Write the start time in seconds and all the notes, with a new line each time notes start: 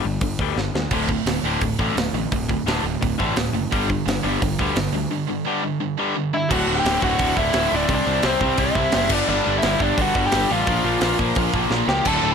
0.05 G1 G2 D3
0.21 G1 G2 D3, kick, open hi-hat
0.39 D2 G2 D3 G3, kick
0.56 G1 G2 D3, snare
0.74 D2 G2 D3, snare
0.91 D1 D2 A2 D3, kick, open hi-hat, crash
1.09 D2 A2, kick
1.26 D1 D2 A2, snare, open hi-hat
1.43 D1 D2 A2 D3
1.61 D1 D2 A2, kick, open hi-hat
1.79 A1 D2 A2 D3, kick
1.95 D1 D2 A2, snare, open hi-hat
2.13 A1 D2 A2
2.32 D1 D2 A2, kick, open hi-hat
2.49 D2 A2, kick
2.66 D1 D2 A2 D3, snare, open hi-hat
2.83 D1 D2 A2
3.01 D1 D2 A2, kick, open hi-hat
3.18 A1 D2 A2 D3, kick
3.36 D1 D2 A2, snare, open hi-hat
3.53 F#1 D2 A2
3.72 G1 G2 D3 G3, kick, open hi-hat
3.89 G2 D3, kick
4.06 G1 G2 D3, snare, open hi-hat
4.23 G1 G2 D3 G3
4.42 G1 G2 D3, kick, open hi-hat
4.59 D2 G2 D3 G3, kick
4.75 G1 G2 D3, snare, open hi-hat
4.93 D2 G2 D3
5.11 G2 D3
5.29 G2 D3
5.47 G2 D3 G3
5.64 G2 D3
5.81 G2 D3
5.99 G2 D3 G3
6.16 G2 D3
6.34 G2 D3 E4 E5
6.49 D1 D2 A2 D3 F#4 F#5, kick, crash
6.68 D1 D2 A2 D3
6.77 G4 G5
6.85 D1 D2 A2 D3, snare, open hi-hat
7.02 D1 D2 A2 D3 F#4 F#5, kick
7.19 D1 D2 A2 D3, kick, open hi-hat
7.36 D1 D2 A2 D3 E4 E5, kick
7.53 D1 D2 A2 D3, snare, open hi-hat
7.72 D1 D2 A2 D3 D4 D5
7.89 C2 C3 G3 C4, kick, open hi-hat
7.93 D4 D5
8.06 C2 C3 G3 C4
8.22 C2 C3 G3 C4 C5, snare, open hi-hat
8.41 C2 C3 G3 C4, kick
8.57 C2 C3 G3 C4 E4 E5, kick, open hi-hat
8.75 C2 C3 G3 C4, kick
8.92 F#1 C3 G3 C4, snare, open hi-hat
9.09 G1 G2 D3 G3 D4 D5, kick, crash
9.27 G1 G2 D3 G3 D4 D5
9.46 G1 G2 D3 G3
9.57 E4 E5
9.62 G1 G2 D3 G3, snare, open hi-hat
9.80 G1 G2 D3 G3 D4 D5, kick
9.98 G1 G2 D3 G3 F#4 F#5, kick, open hi-hat
10.15 G1 G2 D3 G3, kick
10.27 G4 G5
10.32 G1 G2 D3 G3, snare, open hi-hat
10.51 A1 G2 D3 G3 F4 F5
10.67 A#1 A#2 F3 A#3, kick, open hi-hat
10.84 A#1 A#2 F3 A#3
11.01 A#1 A#2 F3 A#3, snare, open hi-hat
11.19 A#1 A#2 F3 A#3, kick
11.35 A#1 A#2 F3 A#3, kick, open hi-hat
11.54 A#1 A#2 F3 A#3, kick
11.70 A#1 A#2 F3 A#3, snare
11.88 C#2 A#2 F3 A#3 G4 G5, snare
12.05 D1 D2 A2 D3 A3 A4 A5, kick, splash, crash
12.09 F#4
12.21 D1 D2 A2 D3